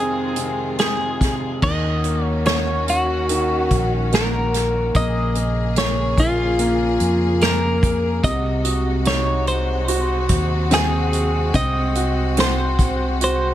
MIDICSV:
0, 0, Header, 1, 6, 480
1, 0, Start_track
1, 0, Tempo, 835655
1, 934, Time_signature, 4, 2, 24, 8
1, 2367, Tempo, 823045
1, 5727, Tempo, 833333
1, 7835, End_track
2, 0, Start_track
2, 0, Title_t, "Clean electric guitar"
2, 0, Program_c, 0, 27
2, 0, Note_on_c, 0, 68, 62
2, 433, Note_off_c, 0, 68, 0
2, 459, Note_on_c, 0, 68, 76
2, 915, Note_off_c, 0, 68, 0
2, 939, Note_on_c, 0, 75, 83
2, 1295, Note_off_c, 0, 75, 0
2, 1295, Note_on_c, 0, 73, 83
2, 1415, Note_off_c, 0, 73, 0
2, 1418, Note_on_c, 0, 73, 81
2, 1638, Note_off_c, 0, 73, 0
2, 1664, Note_on_c, 0, 66, 75
2, 2381, Note_off_c, 0, 66, 0
2, 2383, Note_on_c, 0, 70, 74
2, 2859, Note_on_c, 0, 75, 90
2, 2871, Note_off_c, 0, 70, 0
2, 3334, Note_off_c, 0, 75, 0
2, 3336, Note_on_c, 0, 73, 82
2, 3578, Note_on_c, 0, 65, 80
2, 3579, Note_off_c, 0, 73, 0
2, 4295, Note_on_c, 0, 70, 79
2, 4315, Note_off_c, 0, 65, 0
2, 4772, Note_on_c, 0, 75, 102
2, 4785, Note_off_c, 0, 70, 0
2, 5253, Note_off_c, 0, 75, 0
2, 5256, Note_on_c, 0, 73, 93
2, 5490, Note_off_c, 0, 73, 0
2, 5492, Note_on_c, 0, 72, 84
2, 6219, Note_on_c, 0, 68, 82
2, 6229, Note_off_c, 0, 72, 0
2, 6690, Note_on_c, 0, 75, 92
2, 6705, Note_off_c, 0, 68, 0
2, 7143, Note_off_c, 0, 75, 0
2, 7179, Note_on_c, 0, 72, 84
2, 7630, Note_off_c, 0, 72, 0
2, 7661, Note_on_c, 0, 72, 73
2, 7835, Note_off_c, 0, 72, 0
2, 7835, End_track
3, 0, Start_track
3, 0, Title_t, "Grand piano"
3, 0, Program_c, 1, 0
3, 0, Control_c, 1, 64, 127
3, 0, Note_on_c, 1, 41, 56
3, 0, Note_on_c, 1, 48, 44
3, 0, Note_on_c, 1, 51, 47
3, 0, Note_on_c, 1, 60, 56
3, 202, Note_off_c, 1, 48, 0
3, 211, Note_on_c, 1, 48, 40
3, 430, Note_off_c, 1, 51, 0
3, 453, Note_on_c, 1, 56, 47
3, 685, Note_off_c, 1, 48, 0
3, 694, Note_on_c, 1, 48, 41
3, 910, Note_off_c, 1, 41, 0
3, 912, Note_off_c, 1, 60, 0
3, 921, Note_off_c, 1, 56, 0
3, 927, Note_off_c, 1, 48, 0
3, 935, Note_on_c, 1, 51, 49
3, 941, Control_c, 1, 64, 0
3, 1044, Control_c, 1, 64, 127
3, 1178, Note_on_c, 1, 58, 40
3, 1416, Note_on_c, 1, 61, 40
3, 1885, Note_off_c, 1, 51, 0
3, 1893, Note_on_c, 1, 51, 57
3, 2110, Note_off_c, 1, 58, 0
3, 2347, Note_off_c, 1, 61, 0
3, 2370, Note_on_c, 1, 58, 50
3, 2827, Note_off_c, 1, 51, 0
3, 2836, Note_off_c, 1, 58, 0
3, 2853, Note_on_c, 1, 58, 61
3, 2856, Control_c, 1, 64, 0
3, 2954, Control_c, 1, 64, 127
3, 3084, Note_off_c, 1, 58, 0
3, 3093, Note_on_c, 1, 58, 51
3, 3321, Note_off_c, 1, 58, 0
3, 3329, Note_on_c, 1, 58, 40
3, 3801, Note_off_c, 1, 58, 0
3, 3810, Note_on_c, 1, 58, 55
3, 4282, Note_off_c, 1, 58, 0
3, 4291, Note_on_c, 1, 58, 57
3, 4754, Note_off_c, 1, 58, 0
3, 4769, Note_on_c, 1, 48, 62
3, 4776, Control_c, 1, 64, 0
3, 4864, Control_c, 1, 64, 127
3, 5004, Note_on_c, 1, 66, 47
3, 5247, Note_on_c, 1, 63, 54
3, 5718, Note_off_c, 1, 66, 0
3, 5727, Note_on_c, 1, 66, 61
3, 6182, Note_off_c, 1, 63, 0
3, 6202, Note_on_c, 1, 60, 60
3, 6660, Note_off_c, 1, 66, 0
3, 6662, Note_off_c, 1, 48, 0
3, 6673, Note_off_c, 1, 60, 0
3, 6681, Note_on_c, 1, 60, 72
3, 6923, Note_on_c, 1, 66, 52
3, 7153, Note_off_c, 1, 60, 0
3, 7162, Note_on_c, 1, 60, 53
3, 7638, Note_off_c, 1, 66, 0
3, 7646, Note_on_c, 1, 66, 62
3, 7835, Note_off_c, 1, 60, 0
3, 7835, Note_off_c, 1, 66, 0
3, 7835, End_track
4, 0, Start_track
4, 0, Title_t, "String section"
4, 0, Program_c, 2, 48
4, 0, Note_on_c, 2, 51, 54
4, 0, Note_on_c, 2, 56, 52
4, 0, Note_on_c, 2, 65, 71
4, 911, Note_off_c, 2, 65, 0
4, 918, Note_off_c, 2, 51, 0
4, 918, Note_off_c, 2, 56, 0
4, 933, Note_on_c, 2, 51, 55
4, 935, Note_on_c, 2, 61, 50
4, 935, Note_on_c, 2, 66, 64
4, 2830, Note_off_c, 2, 51, 0
4, 2831, Note_off_c, 2, 61, 0
4, 2831, Note_off_c, 2, 66, 0
4, 2847, Note_on_c, 2, 49, 60
4, 2847, Note_on_c, 2, 68, 64
4, 2850, Note_on_c, 2, 58, 52
4, 4747, Note_off_c, 2, 49, 0
4, 4747, Note_off_c, 2, 68, 0
4, 4749, Note_off_c, 2, 58, 0
4, 4766, Note_on_c, 2, 66, 75
4, 4767, Note_on_c, 2, 48, 66
4, 4767, Note_on_c, 2, 56, 63
4, 7835, Note_off_c, 2, 48, 0
4, 7835, Note_off_c, 2, 56, 0
4, 7835, Note_off_c, 2, 66, 0
4, 7835, End_track
5, 0, Start_track
5, 0, Title_t, "Fingered electric bass"
5, 0, Program_c, 3, 33
5, 932, Note_on_c, 3, 39, 80
5, 2107, Note_off_c, 3, 39, 0
5, 2129, Note_on_c, 3, 34, 76
5, 2825, Note_off_c, 3, 34, 0
5, 2849, Note_on_c, 3, 34, 91
5, 4025, Note_off_c, 3, 34, 0
5, 4049, Note_on_c, 3, 41, 86
5, 4744, Note_off_c, 3, 41, 0
5, 4767, Note_on_c, 3, 36, 103
5, 5944, Note_off_c, 3, 36, 0
5, 5963, Note_on_c, 3, 39, 93
5, 6659, Note_off_c, 3, 39, 0
5, 6681, Note_on_c, 3, 36, 100
5, 7835, Note_off_c, 3, 36, 0
5, 7835, End_track
6, 0, Start_track
6, 0, Title_t, "Drums"
6, 207, Note_on_c, 9, 42, 60
6, 264, Note_off_c, 9, 42, 0
6, 451, Note_on_c, 9, 42, 60
6, 457, Note_on_c, 9, 38, 78
6, 508, Note_off_c, 9, 42, 0
6, 514, Note_off_c, 9, 38, 0
6, 694, Note_on_c, 9, 36, 68
6, 696, Note_on_c, 9, 42, 52
6, 700, Note_on_c, 9, 38, 29
6, 752, Note_off_c, 9, 36, 0
6, 754, Note_off_c, 9, 42, 0
6, 757, Note_off_c, 9, 38, 0
6, 932, Note_on_c, 9, 49, 76
6, 933, Note_on_c, 9, 36, 76
6, 990, Note_off_c, 9, 36, 0
6, 990, Note_off_c, 9, 49, 0
6, 1171, Note_on_c, 9, 42, 60
6, 1228, Note_off_c, 9, 42, 0
6, 1410, Note_on_c, 9, 42, 72
6, 1419, Note_on_c, 9, 38, 82
6, 1468, Note_off_c, 9, 42, 0
6, 1476, Note_off_c, 9, 38, 0
6, 1653, Note_on_c, 9, 42, 58
6, 1711, Note_off_c, 9, 42, 0
6, 1890, Note_on_c, 9, 42, 73
6, 1948, Note_off_c, 9, 42, 0
6, 2129, Note_on_c, 9, 42, 61
6, 2130, Note_on_c, 9, 36, 67
6, 2186, Note_off_c, 9, 42, 0
6, 2187, Note_off_c, 9, 36, 0
6, 2369, Note_on_c, 9, 42, 57
6, 2375, Note_on_c, 9, 38, 86
6, 2428, Note_off_c, 9, 42, 0
6, 2434, Note_off_c, 9, 38, 0
6, 2612, Note_on_c, 9, 42, 61
6, 2616, Note_on_c, 9, 38, 30
6, 2671, Note_off_c, 9, 42, 0
6, 2674, Note_off_c, 9, 38, 0
6, 2849, Note_on_c, 9, 42, 68
6, 2850, Note_on_c, 9, 36, 76
6, 2907, Note_off_c, 9, 42, 0
6, 2908, Note_off_c, 9, 36, 0
6, 3085, Note_on_c, 9, 42, 59
6, 3144, Note_off_c, 9, 42, 0
6, 3324, Note_on_c, 9, 42, 84
6, 3332, Note_on_c, 9, 38, 88
6, 3382, Note_off_c, 9, 42, 0
6, 3391, Note_off_c, 9, 38, 0
6, 3565, Note_on_c, 9, 36, 71
6, 3566, Note_on_c, 9, 42, 64
6, 3624, Note_off_c, 9, 36, 0
6, 3625, Note_off_c, 9, 42, 0
6, 3806, Note_on_c, 9, 42, 75
6, 3864, Note_off_c, 9, 42, 0
6, 4046, Note_on_c, 9, 42, 53
6, 4104, Note_off_c, 9, 42, 0
6, 4287, Note_on_c, 9, 42, 62
6, 4293, Note_on_c, 9, 38, 88
6, 4345, Note_off_c, 9, 42, 0
6, 4352, Note_off_c, 9, 38, 0
6, 4529, Note_on_c, 9, 36, 83
6, 4532, Note_on_c, 9, 42, 57
6, 4587, Note_off_c, 9, 36, 0
6, 4590, Note_off_c, 9, 42, 0
6, 4767, Note_on_c, 9, 36, 84
6, 4768, Note_on_c, 9, 42, 69
6, 4825, Note_off_c, 9, 36, 0
6, 4826, Note_off_c, 9, 42, 0
6, 5006, Note_on_c, 9, 42, 66
6, 5064, Note_off_c, 9, 42, 0
6, 5243, Note_on_c, 9, 42, 85
6, 5252, Note_on_c, 9, 38, 93
6, 5302, Note_off_c, 9, 42, 0
6, 5310, Note_off_c, 9, 38, 0
6, 5488, Note_on_c, 9, 42, 57
6, 5546, Note_off_c, 9, 42, 0
6, 5727, Note_on_c, 9, 42, 79
6, 5784, Note_off_c, 9, 42, 0
6, 5962, Note_on_c, 9, 42, 63
6, 5964, Note_on_c, 9, 36, 66
6, 6019, Note_off_c, 9, 42, 0
6, 6021, Note_off_c, 9, 36, 0
6, 6204, Note_on_c, 9, 42, 66
6, 6210, Note_on_c, 9, 38, 82
6, 6261, Note_off_c, 9, 42, 0
6, 6267, Note_off_c, 9, 38, 0
6, 6446, Note_on_c, 9, 42, 61
6, 6503, Note_off_c, 9, 42, 0
6, 6682, Note_on_c, 9, 36, 88
6, 6682, Note_on_c, 9, 42, 72
6, 6740, Note_off_c, 9, 36, 0
6, 6740, Note_off_c, 9, 42, 0
6, 6920, Note_on_c, 9, 42, 63
6, 6977, Note_off_c, 9, 42, 0
6, 7160, Note_on_c, 9, 42, 85
6, 7168, Note_on_c, 9, 38, 95
6, 7217, Note_off_c, 9, 42, 0
6, 7226, Note_off_c, 9, 38, 0
6, 7400, Note_on_c, 9, 36, 74
6, 7402, Note_on_c, 9, 42, 62
6, 7458, Note_off_c, 9, 36, 0
6, 7460, Note_off_c, 9, 42, 0
6, 7643, Note_on_c, 9, 42, 82
6, 7701, Note_off_c, 9, 42, 0
6, 7835, End_track
0, 0, End_of_file